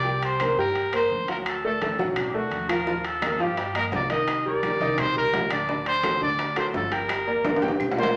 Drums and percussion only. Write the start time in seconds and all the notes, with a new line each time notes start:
0.05 high conga
0.23 high conga, high timbale
0.40 high conga, high timbale, claves
0.75 high conga, high timbale
0.93 high conga, high timbale, claves
1.11 high conga
1.28 high conga, high timbale
1.46 high conga, high timbale, claves
1.64 high conga
1.82 high conga, high timbale
1.99 high conga
2.16 high conga, low conga, high timbale, claves
2.35 high conga
2.52 high conga, high timbale
2.69 high timbale, claves
2.87 high bongo, high conga
3.04 high bongo, high conga, high timbale
3.22 high bongo, high conga, high timbale, claves
3.40 high bongo
3.57 high bongo, high conga, high timbale
3.75 high bongo, high conga, high timbale, claves
3.92 high bongo, low bongo, high conga, low timbale
4.10 high conga, high timbale
4.27 high bongo, high conga, high timbale, claves
4.46 high bongo, high conga
4.63 high bongo, high conga, high timbale
4.81 high bongo, high conga
4.98 high bongo, high conga, low conga, high timbale, claves
5.16 high conga
5.33 high bongo, low bongo, high conga, high timbale, low timbale
5.51 high timbale, claves
5.68 high bongo, high conga
5.86 high bongo, high conga, high timbale
6.03 high bongo, high conga, high timbale, claves
6.22 high bongo
6.39 high bongo, high conga, high timbale
6.56 high bongo, high conga, high timbale, claves
6.74 high bongo, low bongo, high conga, low timbale
6.92 high conga, high timbale
7.09 high bongo, high conga, high timbale, claves
7.27 high bongo, high conga
7.44 high bongo, high conga, high timbale
7.56 high timbale
7.62 high bongo, high conga
7.68 high timbale
7.80 low bongo, high conga, low conga, claves
7.92 low timbale
7.97 low bongo, high conga
8.03 low timbale